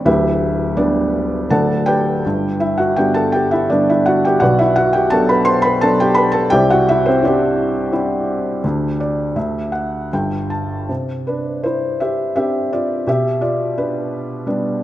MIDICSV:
0, 0, Header, 1, 2, 480
1, 0, Start_track
1, 0, Key_signature, 1, "major"
1, 0, Tempo, 724638
1, 43, Time_signature, 3, 2, 24, 8
1, 2924, Tempo, 704225
1, 5804, Tempo, 722892
1, 6284, Tempo, 760456
1, 7251, Key_signature, 0, "major"
1, 7724, Tempo, 707547
1, 9888, End_track
2, 0, Start_track
2, 0, Title_t, "Felt piano"
2, 0, Program_c, 0, 0
2, 0, Control_c, 0, 64, 127
2, 35, Note_on_c, 0, 38, 68
2, 36, Note_on_c, 0, 64, 65
2, 37, Note_on_c, 0, 67, 64
2, 37, Note_on_c, 0, 76, 91
2, 38, Note_on_c, 0, 26, 60
2, 42, Note_on_c, 0, 71, 66
2, 50, Control_c, 0, 64, 0
2, 165, Control_c, 0, 64, 127
2, 485, Note_off_c, 0, 64, 0
2, 485, Note_off_c, 0, 67, 0
2, 488, Note_off_c, 0, 71, 0
2, 509, Note_on_c, 0, 74, 85
2, 510, Note_on_c, 0, 50, 46
2, 510, Note_on_c, 0, 55, 41
2, 510, Note_on_c, 0, 62, 61
2, 511, Note_on_c, 0, 59, 51
2, 515, Note_on_c, 0, 71, 61
2, 526, Note_off_c, 0, 76, 0
2, 969, Note_off_c, 0, 38, 0
2, 971, Note_off_c, 0, 26, 0
2, 971, Note_off_c, 0, 62, 0
2, 973, Note_off_c, 0, 71, 0
2, 982, Note_off_c, 0, 50, 0
2, 983, Note_off_c, 0, 55, 0
2, 983, Note_off_c, 0, 59, 0
2, 994, Note_off_c, 0, 74, 0
2, 997, Note_on_c, 0, 81, 79
2, 998, Note_on_c, 0, 26, 55
2, 998, Note_on_c, 0, 38, 64
2, 1002, Note_on_c, 0, 78, 59
2, 1003, Note_on_c, 0, 69, 59
2, 1004, Note_on_c, 0, 74, 62
2, 1009, Control_c, 0, 64, 0
2, 1118, Control_c, 0, 64, 127
2, 1230, Note_off_c, 0, 69, 0
2, 1230, Note_off_c, 0, 74, 0
2, 1230, Note_off_c, 0, 78, 0
2, 1232, Note_on_c, 0, 79, 94
2, 1238, Note_on_c, 0, 71, 61
2, 1240, Note_on_c, 0, 74, 60
2, 1245, Note_on_c, 0, 67, 62
2, 1251, Note_off_c, 0, 81, 0
2, 1463, Note_off_c, 0, 26, 0
2, 1475, Note_off_c, 0, 38, 0
2, 1494, Note_on_c, 0, 43, 58
2, 1497, Control_c, 0, 64, 0
2, 1500, Note_on_c, 0, 31, 54
2, 1630, Control_c, 0, 64, 127
2, 1702, Note_off_c, 0, 71, 0
2, 1703, Note_off_c, 0, 74, 0
2, 1706, Note_off_c, 0, 67, 0
2, 1723, Note_on_c, 0, 76, 74
2, 1726, Note_on_c, 0, 64, 63
2, 1740, Note_off_c, 0, 79, 0
2, 1839, Note_on_c, 0, 78, 75
2, 1840, Note_off_c, 0, 64, 0
2, 1847, Note_on_c, 0, 66, 65
2, 1851, Note_off_c, 0, 76, 0
2, 1960, Note_off_c, 0, 66, 0
2, 1964, Note_on_c, 0, 79, 89
2, 1968, Note_off_c, 0, 78, 0
2, 1969, Note_on_c, 0, 50, 46
2, 1970, Note_on_c, 0, 55, 38
2, 1972, Note_on_c, 0, 67, 62
2, 1973, Note_on_c, 0, 59, 49
2, 2077, Note_off_c, 0, 79, 0
2, 2082, Note_off_c, 0, 67, 0
2, 2082, Note_on_c, 0, 81, 80
2, 2092, Note_on_c, 0, 69, 63
2, 2201, Note_on_c, 0, 79, 81
2, 2202, Note_off_c, 0, 69, 0
2, 2209, Note_off_c, 0, 81, 0
2, 2214, Note_on_c, 0, 67, 61
2, 2316, Note_off_c, 0, 79, 0
2, 2323, Note_off_c, 0, 67, 0
2, 2326, Note_on_c, 0, 76, 85
2, 2340, Note_on_c, 0, 64, 67
2, 2434, Note_off_c, 0, 50, 0
2, 2435, Note_off_c, 0, 55, 0
2, 2436, Note_off_c, 0, 59, 0
2, 2447, Note_off_c, 0, 64, 0
2, 2449, Note_on_c, 0, 74, 79
2, 2451, Note_on_c, 0, 50, 47
2, 2451, Note_on_c, 0, 55, 44
2, 2452, Note_off_c, 0, 76, 0
2, 2459, Note_on_c, 0, 59, 56
2, 2463, Note_on_c, 0, 62, 68
2, 2569, Note_off_c, 0, 62, 0
2, 2573, Note_off_c, 0, 74, 0
2, 2580, Note_on_c, 0, 76, 85
2, 2586, Note_on_c, 0, 64, 63
2, 2688, Note_on_c, 0, 78, 89
2, 2690, Note_off_c, 0, 64, 0
2, 2698, Note_off_c, 0, 76, 0
2, 2700, Note_on_c, 0, 66, 67
2, 2805, Note_off_c, 0, 66, 0
2, 2811, Note_off_c, 0, 78, 0
2, 2813, Note_on_c, 0, 79, 84
2, 2827, Note_on_c, 0, 67, 71
2, 2901, Note_off_c, 0, 43, 0
2, 2904, Note_off_c, 0, 31, 0
2, 2912, Note_off_c, 0, 50, 0
2, 2912, Note_off_c, 0, 55, 0
2, 2914, Note_on_c, 0, 78, 96
2, 2915, Note_off_c, 0, 59, 0
2, 2920, Note_off_c, 0, 79, 0
2, 2924, Note_on_c, 0, 35, 58
2, 2925, Note_on_c, 0, 47, 65
2, 2925, Note_on_c, 0, 74, 69
2, 2926, Note_on_c, 0, 66, 68
2, 2927, Note_off_c, 0, 67, 0
2, 2929, Note_on_c, 0, 71, 64
2, 2934, Control_c, 0, 64, 0
2, 3036, Note_off_c, 0, 74, 0
2, 3037, Note_off_c, 0, 66, 0
2, 3039, Note_off_c, 0, 71, 0
2, 3039, Control_c, 0, 64, 127
2, 3042, Note_on_c, 0, 76, 90
2, 3043, Note_off_c, 0, 78, 0
2, 3058, Note_on_c, 0, 64, 68
2, 3155, Note_off_c, 0, 76, 0
2, 3158, Note_on_c, 0, 78, 93
2, 3164, Note_off_c, 0, 64, 0
2, 3170, Note_on_c, 0, 66, 72
2, 3275, Note_on_c, 0, 79, 94
2, 3280, Note_off_c, 0, 66, 0
2, 3286, Note_off_c, 0, 78, 0
2, 3291, Note_on_c, 0, 67, 66
2, 3393, Note_off_c, 0, 79, 0
2, 3394, Note_on_c, 0, 81, 101
2, 3400, Note_on_c, 0, 62, 55
2, 3401, Note_off_c, 0, 67, 0
2, 3401, Note_on_c, 0, 59, 46
2, 3403, Note_on_c, 0, 54, 50
2, 3414, Note_on_c, 0, 69, 78
2, 3512, Note_off_c, 0, 81, 0
2, 3521, Note_on_c, 0, 83, 91
2, 3523, Note_off_c, 0, 69, 0
2, 3530, Note_on_c, 0, 71, 72
2, 3629, Note_on_c, 0, 84, 103
2, 3635, Note_on_c, 0, 72, 76
2, 3636, Note_off_c, 0, 83, 0
2, 3641, Note_off_c, 0, 71, 0
2, 3746, Note_on_c, 0, 83, 105
2, 3752, Note_off_c, 0, 72, 0
2, 3762, Note_off_c, 0, 84, 0
2, 3768, Note_on_c, 0, 71, 72
2, 3868, Note_off_c, 0, 59, 0
2, 3868, Note_off_c, 0, 62, 0
2, 3869, Note_off_c, 0, 54, 0
2, 3878, Note_off_c, 0, 71, 0
2, 3878, Note_on_c, 0, 81, 103
2, 3879, Note_off_c, 0, 83, 0
2, 3882, Note_on_c, 0, 54, 56
2, 3885, Note_on_c, 0, 59, 49
2, 3887, Note_on_c, 0, 69, 79
2, 3889, Note_on_c, 0, 62, 60
2, 3997, Note_off_c, 0, 69, 0
2, 4004, Note_off_c, 0, 81, 0
2, 4006, Note_on_c, 0, 79, 99
2, 4016, Note_on_c, 0, 67, 78
2, 4104, Note_on_c, 0, 83, 104
2, 4121, Note_off_c, 0, 67, 0
2, 4124, Note_on_c, 0, 71, 81
2, 4127, Note_off_c, 0, 79, 0
2, 4221, Note_on_c, 0, 81, 98
2, 4234, Note_off_c, 0, 71, 0
2, 4234, Note_on_c, 0, 69, 76
2, 4236, Note_off_c, 0, 83, 0
2, 4333, Note_off_c, 0, 35, 0
2, 4334, Note_off_c, 0, 47, 0
2, 4345, Note_off_c, 0, 54, 0
2, 4347, Note_off_c, 0, 59, 0
2, 4347, Note_on_c, 0, 79, 107
2, 4348, Note_off_c, 0, 62, 0
2, 4349, Note_off_c, 0, 69, 0
2, 4355, Note_off_c, 0, 81, 0
2, 4357, Note_on_c, 0, 74, 80
2, 4360, Note_on_c, 0, 76, 74
2, 4361, Note_on_c, 0, 36, 72
2, 4361, Note_on_c, 0, 67, 78
2, 4362, Note_on_c, 0, 48, 75
2, 4369, Control_c, 0, 64, 0
2, 4470, Note_off_c, 0, 74, 0
2, 4472, Note_off_c, 0, 67, 0
2, 4472, Note_off_c, 0, 76, 0
2, 4474, Control_c, 0, 64, 127
2, 4477, Note_off_c, 0, 79, 0
2, 4485, Note_on_c, 0, 78, 94
2, 4498, Note_on_c, 0, 66, 69
2, 4594, Note_off_c, 0, 78, 0
2, 4601, Note_off_c, 0, 66, 0
2, 4609, Note_on_c, 0, 76, 99
2, 4624, Note_on_c, 0, 64, 74
2, 4725, Note_off_c, 0, 64, 0
2, 4725, Note_on_c, 0, 72, 90
2, 4728, Note_off_c, 0, 76, 0
2, 4738, Note_on_c, 0, 60, 73
2, 4833, Note_off_c, 0, 60, 0
2, 4842, Note_on_c, 0, 62, 48
2, 4842, Note_on_c, 0, 64, 56
2, 4843, Note_on_c, 0, 60, 49
2, 4846, Note_off_c, 0, 72, 0
2, 4856, Note_on_c, 0, 74, 86
2, 4864, Note_off_c, 0, 62, 0
2, 4869, Note_on_c, 0, 67, 68
2, 4874, Note_on_c, 0, 62, 64
2, 5305, Note_off_c, 0, 60, 0
2, 5305, Note_off_c, 0, 62, 0
2, 5306, Note_off_c, 0, 64, 0
2, 5315, Note_on_c, 0, 60, 54
2, 5316, Note_on_c, 0, 62, 51
2, 5320, Note_on_c, 0, 64, 61
2, 5777, Note_off_c, 0, 36, 0
2, 5778, Note_off_c, 0, 48, 0
2, 5787, Note_off_c, 0, 60, 0
2, 5788, Note_off_c, 0, 62, 0
2, 5790, Note_off_c, 0, 64, 0
2, 5803, Note_on_c, 0, 50, 68
2, 5804, Note_on_c, 0, 38, 66
2, 5812, Control_c, 0, 64, 0
2, 5947, Control_c, 0, 64, 127
2, 6035, Note_off_c, 0, 74, 0
2, 6045, Note_on_c, 0, 74, 72
2, 6258, Note_off_c, 0, 38, 0
2, 6268, Note_off_c, 0, 74, 0
2, 6269, Note_off_c, 0, 50, 0
2, 6281, Note_on_c, 0, 38, 56
2, 6282, Note_on_c, 0, 50, 60
2, 6283, Note_on_c, 0, 76, 62
2, 6293, Control_c, 0, 64, 0
2, 6412, Control_c, 0, 64, 127
2, 6501, Note_off_c, 0, 76, 0
2, 6511, Note_on_c, 0, 78, 66
2, 6736, Note_off_c, 0, 38, 0
2, 6741, Note_off_c, 0, 78, 0
2, 6747, Note_off_c, 0, 50, 0
2, 6750, Note_off_c, 0, 67, 0
2, 6769, Note_on_c, 0, 43, 59
2, 6769, Note_on_c, 0, 79, 65
2, 6770, Note_on_c, 0, 31, 60
2, 6771, Control_c, 0, 64, 0
2, 6867, Control_c, 0, 64, 127
2, 6995, Note_off_c, 0, 79, 0
2, 7003, Note_on_c, 0, 81, 59
2, 7230, Note_off_c, 0, 31, 0
2, 7231, Note_off_c, 0, 81, 0
2, 7240, Note_off_c, 0, 43, 0
2, 7249, Note_on_c, 0, 48, 49
2, 7260, Control_c, 0, 64, 0
2, 7359, Control_c, 0, 64, 127
2, 7488, Note_on_c, 0, 71, 59
2, 7497, Note_on_c, 0, 62, 48
2, 7712, Note_off_c, 0, 62, 0
2, 7718, Note_on_c, 0, 72, 69
2, 7731, Note_off_c, 0, 71, 0
2, 7732, Note_on_c, 0, 64, 55
2, 7959, Note_off_c, 0, 64, 0
2, 7968, Note_on_c, 0, 76, 75
2, 7976, Note_off_c, 0, 72, 0
2, 7977, Note_on_c, 0, 67, 57
2, 8198, Note_off_c, 0, 76, 0
2, 8201, Note_off_c, 0, 67, 0
2, 8208, Note_on_c, 0, 76, 79
2, 8214, Note_on_c, 0, 60, 42
2, 8214, Note_on_c, 0, 62, 37
2, 8215, Note_on_c, 0, 67, 62
2, 8434, Note_off_c, 0, 76, 0
2, 8438, Note_off_c, 0, 67, 0
2, 8459, Note_on_c, 0, 74, 78
2, 8461, Note_on_c, 0, 65, 59
2, 8663, Note_off_c, 0, 48, 0
2, 8677, Note_off_c, 0, 60, 0
2, 8677, Note_off_c, 0, 62, 0
2, 8679, Note_off_c, 0, 65, 0
2, 8692, Note_on_c, 0, 47, 58
2, 8694, Note_on_c, 0, 67, 68
2, 8699, Control_c, 0, 64, 0
2, 8701, Note_off_c, 0, 74, 0
2, 8702, Note_on_c, 0, 76, 86
2, 8816, Control_c, 0, 64, 127
2, 8913, Note_off_c, 0, 67, 0
2, 8918, Note_off_c, 0, 76, 0
2, 8923, Note_on_c, 0, 65, 61
2, 8926, Note_on_c, 0, 74, 73
2, 9146, Note_off_c, 0, 65, 0
2, 9148, Note_off_c, 0, 74, 0
2, 9171, Note_on_c, 0, 62, 52
2, 9172, Note_on_c, 0, 71, 70
2, 9632, Note_off_c, 0, 62, 0
2, 9639, Note_on_c, 0, 55, 52
2, 9641, Note_on_c, 0, 59, 44
2, 9643, Note_on_c, 0, 62, 56
2, 9859, Note_off_c, 0, 71, 0
2, 9888, Note_off_c, 0, 47, 0
2, 9888, Note_off_c, 0, 55, 0
2, 9888, Note_off_c, 0, 59, 0
2, 9888, Note_off_c, 0, 62, 0
2, 9888, End_track
0, 0, End_of_file